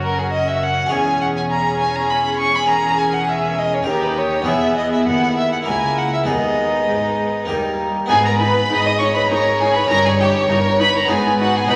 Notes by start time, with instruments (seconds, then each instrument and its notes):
Already playing: double bass section F#1, harpsichord F#2 C#4 F#4 A#4, cello section F#2, viola section C#4, violin section F#4 A#4
0.03 violin A#4
0.18 violin G#4
0.32 violin D#5
0.48 violin E5
0.63 violin F#5
0.86 harpsichord C#4 G#4 C#5
0.91 double bass section E1, harpsichord E2, cello section E2, violin section G#4 C#5, violin G#5
1.21 violin F#5
1.37 violin G#5
1.50 violin A#5
1.80 violin G#5
1.96 violin A#5
2.10 violin B5
2.39 violin C#6
2.55 violin B5
2.64 harpsichord C#4 G#4 A#4
2.69 viola section C#4, violin section A#4, violin A#5
2.98 violin G#5
3.13 violin F#5
3.28 violin E5
3.58 violin D#5
3.73 violin C#5
3.83 harpsichord D#4 G4 A#4
3.87 cello section D#2, harpsichord D#2, double bass section D#2, viola section D#4, violin section G4, violin A#4
4.03 violin B4
4.18 violin C#5
4.42 cello section E2, harpsichord B3 E4 G#4, viola section B3
4.46 double bass section E1, harpsichord E2, violin section E4 G#4, violin E5
4.77 violin D#5
4.92 violin E5
5.06 cello section D#2, harpsichord D#2, double bass section D#2, violin F#5
5.37 violin E5
5.52 violin F#5
5.62 harpsichord A#3 E4 A#4
5.66 cello section C#2, harpsichord C#2, double bass section C#2, viola section A#3, violin section E4 A#4, violin G#5
5.97 violin F#5
6.13 violin E5
6.23 viola section G#3, harpsichord B3 D#4 G#4
6.28 harpsichord D#2, cello section D#2, double bass section D#2, violin section D#4 B4, violin D#5
6.88 double bass section G#1, harpsichord G#2, cello section G#2
7.45 cello section D#2, viola section G3, harpsichord A#3 D#4 G4
7.50 harpsichord D#2, double bass section D#2, violin section D#4 A#4
8.06 cello section G#2, harpsichord B3 D#4 G#4, violin section G#5
8.10 double bass section G#1, harpsichord G#2, viola section D#4, violin G#4, violin section B4
8.25 violin A#4, violin section A#5
8.40 viola section D#4, violin B4, violin section B5
8.70 double bass section G#1, cello section G#2, harpsichord G#2, viola section D#4, violin section D#5
8.86 violin D#5, violin section D#6
8.99 viola section D#4, violin C#5, violin section C#6
9.15 violin B4, violin section B5
9.30 double bass section G#1, cello section G#2, harpsichord G#2, viola section D#4, violin A#4, violin section C#5 A#5
9.60 viola section D#4, violin G#4, violin section G#5
9.75 violin B4, violin section B5
9.85 harpsichord C#4 D#4 A#4
9.89 double bass section G1, cello section G2, harpsichord G2, viola section D#4, violin A#4, violin section A#5
10.05 violin G#4, violin section G#5
10.19 viola section D#4, violin G4, violin section G5
10.49 double bass section G1, harpsichord G2, cello section G2, viola section D#4, violin A#4, violin section A#5
10.79 viola section D#4, violin B4, violin section B5
10.95 violin A#4, violin section A#5
11.05 harpsichord B3 D#4 G#4, viola section D#4
11.10 double bass section G#1, harpsichord G#2, cello section G#2, violin G#4, violin section B4 G#5
11.39 viola section D#4, violin F#4, violin section F#5
11.55 violin G#4, violin section G#5
11.65 harpsichord B3 D#4 F#4, viola section D#4, violin section D#5
11.69 double bass section B1, harpsichord B2, cello section B2, violin B4, violin section B5